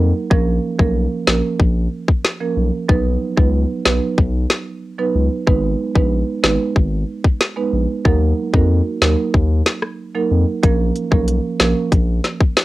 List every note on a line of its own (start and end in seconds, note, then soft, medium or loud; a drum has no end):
0.00 0.13 F2 medium
0.30 0.59 A#1 loud
0.30 0.75 F3 medium
0.30 0.75 A#3 medium
0.30 0.75 C#4 medium
0.30 0.75 A#4 loud
0.30 kick loud
0.79 1.07 B1 medium
0.79 1.24 F3 medium
0.79 1.24 A#3 medium
0.79 1.24 C#4 medium
0.79 1.24 A#4 medium
0.79 kick medium
1.27 1.42 A#1 medium
1.27 1.57 F3 medium
1.27 1.57 A#3 medium
1.27 1.57 C#4 medium
1.27 1.57 A#4 medium
1.27 snare loud
1.60 1.88 A#1 loud
1.60 kick loud
2.08 kick loud
2.25 snare loud
2.40 2.57 F3 medium
2.40 2.57 A#3 medium
2.40 2.58 C#4 medium
2.40 2.58 A#4 medium
2.57 2.71 B1 loud
2.89 3.17 B1 loud
2.89 3.33 F#3 medium
2.89 3.33 B3 medium
2.89 3.33 D#4 medium
2.89 3.34 B4 loud
2.89 kick loud
3.37 3.65 C#2 medium
3.37 3.82 F#3 medium
3.37 3.82 B3 medium
3.37 3.82 D#4 medium
3.37 3.82 B4 medium
3.37 kick loud
3.85 4.00 B1 medium
3.85 4.15 F#3 medium
3.85 4.15 B3 medium
3.85 4.15 D#4 medium
3.85 4.16 B4 medium
3.85 snare loud
4.18 4.46 B1 loud
4.18 kick loud
4.50 snare loud
4.98 5.15 F#3 medium
4.98 5.15 B3 medium
4.98 5.16 D#4 medium
4.98 5.16 B4 medium
5.15 5.29 C#2 medium
5.47 5.75 G#1 loud
5.47 5.91 G#3 medium
5.47 5.92 B3 medium
5.47 5.92 D#4 medium
5.47 5.92 B4 loud
5.47 kick loud
5.95 6.23 A#1 medium
5.95 6.40 G#3 medium
5.95 6.40 B3 medium
5.95 6.40 D#4 medium
5.95 6.40 B4 medium
5.95 kick medium
6.43 6.58 G#1 loud
6.43 6.73 G#3 medium
6.43 6.73 B3 medium
6.43 6.74 D#4 medium
6.43 6.74 B4 medium
6.43 snare loud
6.76 7.04 G#1 loud
6.76 kick loud
7.24 kick loud
7.41 snare loud
7.56 7.73 G#3 medium
7.56 7.74 B3 medium
7.56 7.74 D#4 medium
7.56 7.74 B4 medium
7.73 7.87 A#1 loud
8.05 8.33 D#2 loud
8.05 8.49 F#3 medium
8.05 8.50 A#3 medium
8.05 8.50 D#4 medium
8.05 8.50 A#4 loud
8.05 kick loud
8.53 8.82 F2 medium
8.53 8.98 A#3 medium
8.53 8.98 D#4 medium
8.53 8.98 F#4 medium
8.53 8.98 A#4 medium
8.53 kick medium
9.02 9.16 D#2 medium
9.02 9.31 F#3 medium
9.02 9.32 A#3 medium
9.02 9.32 D#4 medium
9.02 9.32 A#4 medium
9.02 snare loud
9.34 9.62 D#2 loud
9.34 kick loud
9.66 snare loud
9.82 cross-stick medium
10.15 10.32 F#3 medium
10.15 10.32 A#3 medium
10.15 10.32 D#4 medium
10.15 10.32 A#4 medium
10.31 10.45 F2 medium
10.63 10.91 A#1 loud
10.63 11.07 F3 medium
10.63 11.08 A#3 medium
10.63 11.08 C#4 medium
10.63 11.08 A#4 loud
10.63 kick loud
10.63 closed hi-hat medium
10.96 closed hi-hat soft
11.11 11.40 B1 medium
11.11 11.56 F3 medium
11.11 11.56 A#3 medium
11.11 11.56 C#4 medium
11.11 11.56 A#4 medium
11.11 kick loud
11.28 closed hi-hat medium
11.60 11.74 A#1 medium
11.60 11.89 F3 medium
11.60 11.90 A#3 medium
11.60 11.90 C#4 medium
11.60 11.90 A#4 medium
11.60 snare loud
11.60 closed hi-hat medium
11.92 12.20 A#1 loud
11.92 kick loud
11.92 closed hi-hat medium
12.24 snare medium
12.24 closed hi-hat medium
12.41 kick loud
12.57 snare loud
12.57 closed hi-hat medium